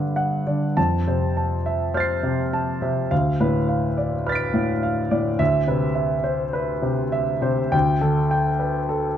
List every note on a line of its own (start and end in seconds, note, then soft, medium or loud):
0.00 0.73 G2 medium
0.00 0.47 D3 soft
0.00 0.79 B4 soft
0.00 0.47 D5 soft
0.00 0.16 F#5 medium
0.16 0.65 F#5 medium
0.47 0.77 D3 soft
0.47 0.77 D5 soft
0.77 3.07 F2 soft
0.77 1.24 A5 medium
1.08 1.54 C3 soft
1.08 1.54 C5 soft
1.37 1.84 A5 soft
1.66 2.13 E5 medium
1.94 2.42 C5 medium
1.94 3.07 F6 soft
1.94 3.08 A6 soft
2.00 3.10 C7 soft
2.23 2.70 C3 soft
2.53 3.00 A5 medium
2.82 3.11 C3 soft
2.82 3.11 E5 soft
3.11 5.36 D2 medium
3.11 3.57 F5 medium
3.40 3.86 A2 soft
3.40 3.86 B4 medium
3.69 4.14 F5 soft
3.98 4.43 D5 soft
4.27 4.72 B4 medium
4.27 5.37 F6 soft
4.27 5.38 A6 soft
4.32 5.40 B6 soft
4.32 5.41 D7 soft
4.54 5.00 A2 medium
4.83 5.29 F5 medium
5.11 5.40 A2 soft
5.11 5.40 D5 medium
5.39 7.69 D2 medium
5.39 5.85 E5 medium
5.67 6.14 C3 soft
5.67 6.14 B4 soft
5.95 6.42 E5 medium
6.24 6.72 C5 soft
6.53 7.01 B4 medium
6.82 7.31 C3 medium
7.12 7.61 E5 medium
7.42 7.72 C3 medium
7.42 7.73 C5 medium
7.72 9.18 D2 medium
7.72 8.19 G5 medium
8.01 8.48 D3 soft
8.01 8.48 A4 medium
8.31 8.78 G5 medium
8.59 9.06 B4 soft
8.89 9.18 A4 soft